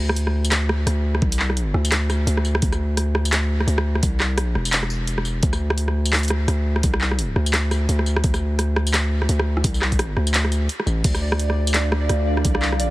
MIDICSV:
0, 0, Header, 1, 5, 480
1, 0, Start_track
1, 0, Key_signature, -1, "minor"
1, 0, Tempo, 350877
1, 1666, Time_signature, 4, 2, 24, 8
1, 17651, End_track
2, 0, Start_track
2, 0, Title_t, "Synth texture"
2, 0, Program_c, 0, 99
2, 15111, Note_on_c, 0, 74, 86
2, 17651, Note_off_c, 0, 74, 0
2, 17651, End_track
3, 0, Start_track
3, 0, Title_t, "Ambient pad"
3, 0, Program_c, 1, 92
3, 15106, Note_on_c, 1, 62, 82
3, 15106, Note_on_c, 1, 77, 93
3, 15108, Note_on_c, 1, 69, 75
3, 17651, Note_off_c, 1, 62, 0
3, 17651, Note_off_c, 1, 69, 0
3, 17651, Note_off_c, 1, 77, 0
3, 17651, End_track
4, 0, Start_track
4, 0, Title_t, "808-style bass"
4, 0, Program_c, 2, 38
4, 0, Note_on_c, 2, 38, 98
4, 1172, Note_off_c, 2, 38, 0
4, 1183, Note_on_c, 2, 38, 95
4, 1648, Note_off_c, 2, 38, 0
4, 1669, Note_on_c, 2, 36, 94
4, 2372, Note_off_c, 2, 36, 0
4, 2380, Note_on_c, 2, 38, 98
4, 3087, Note_off_c, 2, 38, 0
4, 3101, Note_on_c, 2, 38, 97
4, 3568, Note_off_c, 2, 38, 0
4, 3590, Note_on_c, 2, 38, 96
4, 5012, Note_off_c, 2, 38, 0
4, 5025, Note_on_c, 2, 38, 97
4, 5489, Note_off_c, 2, 38, 0
4, 5512, Note_on_c, 2, 36, 94
4, 6004, Note_off_c, 2, 36, 0
4, 6004, Note_on_c, 2, 35, 94
4, 6213, Note_off_c, 2, 35, 0
4, 6226, Note_on_c, 2, 28, 96
4, 7410, Note_off_c, 2, 28, 0
4, 7427, Note_on_c, 2, 38, 98
4, 8851, Note_off_c, 2, 38, 0
4, 8862, Note_on_c, 2, 38, 99
4, 9328, Note_off_c, 2, 38, 0
4, 9352, Note_on_c, 2, 36, 99
4, 10053, Note_off_c, 2, 36, 0
4, 10066, Note_on_c, 2, 38, 99
4, 10770, Note_off_c, 2, 38, 0
4, 10789, Note_on_c, 2, 38, 97
4, 11252, Note_off_c, 2, 38, 0
4, 11271, Note_on_c, 2, 38, 100
4, 12693, Note_off_c, 2, 38, 0
4, 12708, Note_on_c, 2, 38, 98
4, 13171, Note_off_c, 2, 38, 0
4, 13187, Note_on_c, 2, 36, 100
4, 13891, Note_off_c, 2, 36, 0
4, 13907, Note_on_c, 2, 38, 98
4, 14610, Note_off_c, 2, 38, 0
4, 14862, Note_on_c, 2, 33, 95
4, 15088, Note_off_c, 2, 33, 0
4, 15108, Note_on_c, 2, 38, 97
4, 16531, Note_off_c, 2, 38, 0
4, 16545, Note_on_c, 2, 38, 95
4, 17010, Note_off_c, 2, 38, 0
4, 17031, Note_on_c, 2, 36, 94
4, 17651, Note_off_c, 2, 36, 0
4, 17651, End_track
5, 0, Start_track
5, 0, Title_t, "Drums"
5, 129, Note_on_c, 9, 37, 84
5, 225, Note_on_c, 9, 42, 69
5, 266, Note_off_c, 9, 37, 0
5, 362, Note_off_c, 9, 42, 0
5, 369, Note_on_c, 9, 37, 53
5, 506, Note_off_c, 9, 37, 0
5, 610, Note_on_c, 9, 42, 38
5, 610, Note_on_c, 9, 54, 67
5, 706, Note_off_c, 9, 42, 0
5, 706, Note_on_c, 9, 37, 55
5, 706, Note_on_c, 9, 39, 120
5, 706, Note_on_c, 9, 42, 86
5, 747, Note_off_c, 9, 54, 0
5, 843, Note_off_c, 9, 37, 0
5, 843, Note_off_c, 9, 39, 0
5, 843, Note_off_c, 9, 42, 0
5, 948, Note_on_c, 9, 37, 84
5, 1085, Note_off_c, 9, 37, 0
5, 1188, Note_on_c, 9, 37, 53
5, 1188, Note_on_c, 9, 42, 68
5, 1325, Note_off_c, 9, 37, 0
5, 1325, Note_off_c, 9, 42, 0
5, 1568, Note_on_c, 9, 37, 56
5, 1669, Note_on_c, 9, 36, 125
5, 1705, Note_off_c, 9, 37, 0
5, 1806, Note_off_c, 9, 36, 0
5, 1808, Note_on_c, 9, 42, 84
5, 1907, Note_on_c, 9, 39, 63
5, 1944, Note_off_c, 9, 42, 0
5, 2044, Note_off_c, 9, 39, 0
5, 2048, Note_on_c, 9, 37, 54
5, 2146, Note_on_c, 9, 42, 70
5, 2185, Note_off_c, 9, 37, 0
5, 2282, Note_off_c, 9, 42, 0
5, 2385, Note_on_c, 9, 37, 53
5, 2522, Note_off_c, 9, 37, 0
5, 2526, Note_on_c, 9, 42, 39
5, 2526, Note_on_c, 9, 54, 63
5, 2625, Note_off_c, 9, 42, 0
5, 2625, Note_on_c, 9, 37, 81
5, 2625, Note_on_c, 9, 39, 127
5, 2625, Note_on_c, 9, 42, 83
5, 2663, Note_off_c, 9, 54, 0
5, 2762, Note_off_c, 9, 37, 0
5, 2762, Note_off_c, 9, 39, 0
5, 2762, Note_off_c, 9, 42, 0
5, 2868, Note_on_c, 9, 37, 55
5, 2868, Note_on_c, 9, 54, 37
5, 3004, Note_off_c, 9, 37, 0
5, 3004, Note_off_c, 9, 54, 0
5, 3108, Note_on_c, 9, 42, 68
5, 3244, Note_off_c, 9, 42, 0
5, 3248, Note_on_c, 9, 37, 53
5, 3348, Note_on_c, 9, 54, 38
5, 3385, Note_off_c, 9, 37, 0
5, 3485, Note_off_c, 9, 54, 0
5, 3487, Note_on_c, 9, 37, 80
5, 3585, Note_on_c, 9, 42, 83
5, 3589, Note_on_c, 9, 36, 125
5, 3624, Note_off_c, 9, 37, 0
5, 3722, Note_off_c, 9, 42, 0
5, 3726, Note_off_c, 9, 36, 0
5, 3728, Note_on_c, 9, 37, 52
5, 3728, Note_on_c, 9, 54, 35
5, 3864, Note_off_c, 9, 37, 0
5, 3864, Note_off_c, 9, 54, 0
5, 4067, Note_on_c, 9, 37, 51
5, 4067, Note_on_c, 9, 42, 70
5, 4204, Note_off_c, 9, 37, 0
5, 4204, Note_off_c, 9, 42, 0
5, 4308, Note_on_c, 9, 37, 76
5, 4445, Note_off_c, 9, 37, 0
5, 4450, Note_on_c, 9, 42, 37
5, 4450, Note_on_c, 9, 54, 63
5, 4549, Note_off_c, 9, 42, 0
5, 4549, Note_on_c, 9, 37, 52
5, 4549, Note_on_c, 9, 39, 126
5, 4549, Note_on_c, 9, 42, 83
5, 4587, Note_off_c, 9, 54, 0
5, 4686, Note_off_c, 9, 37, 0
5, 4686, Note_off_c, 9, 39, 0
5, 4686, Note_off_c, 9, 42, 0
5, 4931, Note_on_c, 9, 37, 52
5, 5030, Note_on_c, 9, 42, 65
5, 5068, Note_off_c, 9, 37, 0
5, 5167, Note_off_c, 9, 42, 0
5, 5170, Note_on_c, 9, 37, 77
5, 5307, Note_off_c, 9, 37, 0
5, 5409, Note_on_c, 9, 37, 52
5, 5509, Note_on_c, 9, 42, 80
5, 5511, Note_on_c, 9, 36, 120
5, 5546, Note_off_c, 9, 37, 0
5, 5646, Note_off_c, 9, 42, 0
5, 5648, Note_off_c, 9, 36, 0
5, 5749, Note_on_c, 9, 37, 51
5, 5749, Note_on_c, 9, 39, 66
5, 5885, Note_off_c, 9, 37, 0
5, 5885, Note_off_c, 9, 39, 0
5, 5986, Note_on_c, 9, 37, 77
5, 5986, Note_on_c, 9, 42, 64
5, 6123, Note_off_c, 9, 37, 0
5, 6123, Note_off_c, 9, 42, 0
5, 6228, Note_on_c, 9, 37, 48
5, 6365, Note_off_c, 9, 37, 0
5, 6365, Note_on_c, 9, 42, 38
5, 6365, Note_on_c, 9, 54, 67
5, 6465, Note_off_c, 9, 42, 0
5, 6465, Note_on_c, 9, 39, 125
5, 6465, Note_on_c, 9, 42, 78
5, 6502, Note_off_c, 9, 54, 0
5, 6602, Note_off_c, 9, 39, 0
5, 6602, Note_off_c, 9, 42, 0
5, 6604, Note_on_c, 9, 37, 49
5, 6704, Note_on_c, 9, 54, 35
5, 6741, Note_off_c, 9, 37, 0
5, 6841, Note_off_c, 9, 54, 0
5, 6942, Note_on_c, 9, 42, 65
5, 7079, Note_off_c, 9, 42, 0
5, 7084, Note_on_c, 9, 37, 50
5, 7182, Note_on_c, 9, 54, 37
5, 7221, Note_off_c, 9, 37, 0
5, 7319, Note_off_c, 9, 54, 0
5, 7422, Note_on_c, 9, 42, 76
5, 7427, Note_on_c, 9, 36, 121
5, 7559, Note_off_c, 9, 42, 0
5, 7563, Note_on_c, 9, 37, 50
5, 7563, Note_on_c, 9, 54, 36
5, 7564, Note_off_c, 9, 36, 0
5, 7700, Note_off_c, 9, 37, 0
5, 7700, Note_off_c, 9, 54, 0
5, 7802, Note_on_c, 9, 37, 79
5, 7902, Note_on_c, 9, 42, 62
5, 7938, Note_off_c, 9, 37, 0
5, 8038, Note_off_c, 9, 42, 0
5, 8043, Note_on_c, 9, 37, 51
5, 8180, Note_off_c, 9, 37, 0
5, 8283, Note_on_c, 9, 42, 35
5, 8283, Note_on_c, 9, 54, 67
5, 8385, Note_off_c, 9, 42, 0
5, 8385, Note_on_c, 9, 37, 50
5, 8385, Note_on_c, 9, 39, 124
5, 8385, Note_on_c, 9, 42, 34
5, 8420, Note_off_c, 9, 54, 0
5, 8432, Note_off_c, 9, 42, 0
5, 8432, Note_on_c, 9, 42, 40
5, 8463, Note_off_c, 9, 42, 0
5, 8463, Note_on_c, 9, 42, 49
5, 8522, Note_off_c, 9, 37, 0
5, 8522, Note_off_c, 9, 39, 0
5, 8526, Note_off_c, 9, 42, 0
5, 8526, Note_on_c, 9, 42, 54
5, 8545, Note_off_c, 9, 42, 0
5, 8545, Note_on_c, 9, 42, 61
5, 8590, Note_off_c, 9, 42, 0
5, 8590, Note_on_c, 9, 42, 68
5, 8623, Note_on_c, 9, 37, 78
5, 8726, Note_off_c, 9, 42, 0
5, 8760, Note_off_c, 9, 37, 0
5, 8866, Note_on_c, 9, 37, 50
5, 8866, Note_on_c, 9, 42, 63
5, 9003, Note_off_c, 9, 37, 0
5, 9003, Note_off_c, 9, 42, 0
5, 9247, Note_on_c, 9, 37, 52
5, 9346, Note_on_c, 9, 42, 78
5, 9350, Note_on_c, 9, 36, 116
5, 9384, Note_off_c, 9, 37, 0
5, 9483, Note_off_c, 9, 42, 0
5, 9487, Note_off_c, 9, 36, 0
5, 9489, Note_on_c, 9, 37, 79
5, 9590, Note_on_c, 9, 39, 62
5, 9626, Note_off_c, 9, 37, 0
5, 9727, Note_off_c, 9, 39, 0
5, 9732, Note_on_c, 9, 37, 54
5, 9831, Note_on_c, 9, 42, 67
5, 9869, Note_off_c, 9, 37, 0
5, 9968, Note_off_c, 9, 42, 0
5, 10069, Note_on_c, 9, 37, 52
5, 10206, Note_off_c, 9, 37, 0
5, 10210, Note_on_c, 9, 42, 35
5, 10210, Note_on_c, 9, 54, 71
5, 10308, Note_off_c, 9, 42, 0
5, 10308, Note_on_c, 9, 37, 83
5, 10308, Note_on_c, 9, 39, 117
5, 10308, Note_on_c, 9, 42, 78
5, 10347, Note_off_c, 9, 54, 0
5, 10445, Note_off_c, 9, 37, 0
5, 10445, Note_off_c, 9, 39, 0
5, 10445, Note_off_c, 9, 42, 0
5, 10551, Note_on_c, 9, 37, 55
5, 10551, Note_on_c, 9, 54, 40
5, 10688, Note_off_c, 9, 37, 0
5, 10688, Note_off_c, 9, 54, 0
5, 10792, Note_on_c, 9, 42, 64
5, 10929, Note_off_c, 9, 42, 0
5, 10931, Note_on_c, 9, 37, 52
5, 11030, Note_on_c, 9, 54, 40
5, 11068, Note_off_c, 9, 37, 0
5, 11167, Note_off_c, 9, 54, 0
5, 11170, Note_on_c, 9, 37, 82
5, 11268, Note_on_c, 9, 42, 80
5, 11272, Note_on_c, 9, 36, 114
5, 11306, Note_off_c, 9, 37, 0
5, 11405, Note_off_c, 9, 42, 0
5, 11408, Note_off_c, 9, 36, 0
5, 11408, Note_on_c, 9, 37, 55
5, 11408, Note_on_c, 9, 54, 40
5, 11544, Note_off_c, 9, 37, 0
5, 11544, Note_off_c, 9, 54, 0
5, 11748, Note_on_c, 9, 37, 56
5, 11748, Note_on_c, 9, 42, 64
5, 11885, Note_off_c, 9, 37, 0
5, 11885, Note_off_c, 9, 42, 0
5, 11989, Note_on_c, 9, 37, 81
5, 12126, Note_off_c, 9, 37, 0
5, 12130, Note_on_c, 9, 42, 36
5, 12130, Note_on_c, 9, 54, 70
5, 12228, Note_off_c, 9, 42, 0
5, 12228, Note_on_c, 9, 37, 56
5, 12228, Note_on_c, 9, 39, 115
5, 12228, Note_on_c, 9, 42, 78
5, 12267, Note_off_c, 9, 54, 0
5, 12365, Note_off_c, 9, 37, 0
5, 12365, Note_off_c, 9, 39, 0
5, 12365, Note_off_c, 9, 42, 0
5, 12609, Note_on_c, 9, 37, 54
5, 12708, Note_on_c, 9, 42, 65
5, 12746, Note_off_c, 9, 37, 0
5, 12845, Note_off_c, 9, 42, 0
5, 12852, Note_on_c, 9, 37, 81
5, 12989, Note_off_c, 9, 37, 0
5, 13090, Note_on_c, 9, 37, 55
5, 13189, Note_on_c, 9, 36, 115
5, 13189, Note_on_c, 9, 42, 86
5, 13227, Note_off_c, 9, 37, 0
5, 13326, Note_off_c, 9, 36, 0
5, 13326, Note_off_c, 9, 42, 0
5, 13329, Note_on_c, 9, 54, 37
5, 13430, Note_on_c, 9, 37, 56
5, 13430, Note_on_c, 9, 39, 61
5, 13466, Note_off_c, 9, 54, 0
5, 13567, Note_off_c, 9, 37, 0
5, 13567, Note_off_c, 9, 39, 0
5, 13570, Note_on_c, 9, 36, 60
5, 13571, Note_on_c, 9, 42, 38
5, 13669, Note_off_c, 9, 42, 0
5, 13669, Note_on_c, 9, 37, 85
5, 13669, Note_on_c, 9, 42, 70
5, 13707, Note_off_c, 9, 36, 0
5, 13805, Note_off_c, 9, 37, 0
5, 13805, Note_off_c, 9, 42, 0
5, 13908, Note_on_c, 9, 37, 53
5, 14044, Note_off_c, 9, 37, 0
5, 14048, Note_on_c, 9, 42, 38
5, 14048, Note_on_c, 9, 54, 67
5, 14148, Note_off_c, 9, 42, 0
5, 14148, Note_on_c, 9, 39, 116
5, 14148, Note_on_c, 9, 42, 81
5, 14185, Note_off_c, 9, 54, 0
5, 14285, Note_off_c, 9, 39, 0
5, 14285, Note_off_c, 9, 42, 0
5, 14289, Note_on_c, 9, 37, 58
5, 14390, Note_on_c, 9, 42, 39
5, 14390, Note_on_c, 9, 54, 39
5, 14426, Note_off_c, 9, 37, 0
5, 14527, Note_off_c, 9, 42, 0
5, 14527, Note_off_c, 9, 54, 0
5, 14628, Note_on_c, 9, 42, 67
5, 14764, Note_off_c, 9, 42, 0
5, 14769, Note_on_c, 9, 37, 54
5, 14869, Note_on_c, 9, 54, 39
5, 14906, Note_off_c, 9, 37, 0
5, 15006, Note_off_c, 9, 54, 0
5, 15107, Note_on_c, 9, 42, 87
5, 15107, Note_on_c, 9, 49, 80
5, 15108, Note_on_c, 9, 36, 119
5, 15244, Note_off_c, 9, 42, 0
5, 15244, Note_off_c, 9, 49, 0
5, 15245, Note_off_c, 9, 36, 0
5, 15247, Note_on_c, 9, 37, 55
5, 15247, Note_on_c, 9, 54, 38
5, 15384, Note_off_c, 9, 37, 0
5, 15384, Note_off_c, 9, 54, 0
5, 15487, Note_on_c, 9, 37, 85
5, 15588, Note_on_c, 9, 42, 69
5, 15624, Note_off_c, 9, 37, 0
5, 15725, Note_off_c, 9, 42, 0
5, 15729, Note_on_c, 9, 37, 55
5, 15865, Note_off_c, 9, 37, 0
5, 15967, Note_on_c, 9, 42, 39
5, 15967, Note_on_c, 9, 54, 66
5, 16064, Note_off_c, 9, 42, 0
5, 16064, Note_on_c, 9, 37, 56
5, 16064, Note_on_c, 9, 39, 122
5, 16064, Note_on_c, 9, 42, 84
5, 16104, Note_off_c, 9, 54, 0
5, 16201, Note_off_c, 9, 37, 0
5, 16201, Note_off_c, 9, 39, 0
5, 16201, Note_off_c, 9, 42, 0
5, 16306, Note_on_c, 9, 37, 85
5, 16443, Note_off_c, 9, 37, 0
5, 16545, Note_on_c, 9, 37, 54
5, 16545, Note_on_c, 9, 42, 69
5, 16682, Note_off_c, 9, 37, 0
5, 16682, Note_off_c, 9, 42, 0
5, 16925, Note_on_c, 9, 37, 56
5, 17026, Note_on_c, 9, 42, 84
5, 17030, Note_on_c, 9, 36, 126
5, 17062, Note_off_c, 9, 37, 0
5, 17162, Note_off_c, 9, 42, 0
5, 17165, Note_on_c, 9, 37, 80
5, 17166, Note_off_c, 9, 36, 0
5, 17266, Note_on_c, 9, 39, 66
5, 17302, Note_off_c, 9, 37, 0
5, 17403, Note_off_c, 9, 39, 0
5, 17407, Note_on_c, 9, 37, 55
5, 17505, Note_on_c, 9, 42, 69
5, 17544, Note_off_c, 9, 37, 0
5, 17642, Note_off_c, 9, 42, 0
5, 17651, End_track
0, 0, End_of_file